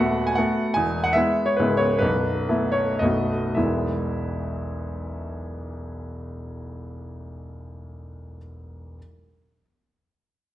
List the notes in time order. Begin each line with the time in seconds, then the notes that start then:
Already playing: D#1 D#2 E5 F#5
0.00 A3 B3 F#4
0.27 G#5
0.35 A3 B3 F#4 F#5
0.74 E1 E2 G#5
1.04 F#5
1.13 G#3 B3 E4 E5
1.46 C#5
1.57 C#1 C#2 G#3 B3 E4 B4
1.77 C#5
1.99 B0 B1 B4
2.49 A3 B3 E4
2.72 C#5
2.99 B0 B1 A3 B3 F#4 D#5
3.55 E1 B1 E3 G#3 B3 E4 E5